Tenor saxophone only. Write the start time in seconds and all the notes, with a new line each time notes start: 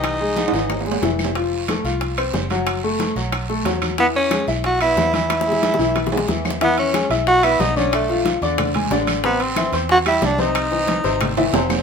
Already playing: D#4
4.00 B3
4.16 C#4
4.66 F#4
4.82 E4
5.15 E4
6.63 B3
6.79 C#4
7.28 F#4
7.44 E4
7.60 D#4
7.77 C#4
7.94 A3
9.25 B3
9.42 C4
9.92 F#4
10.08 E4
10.25 D4
10.41 D#4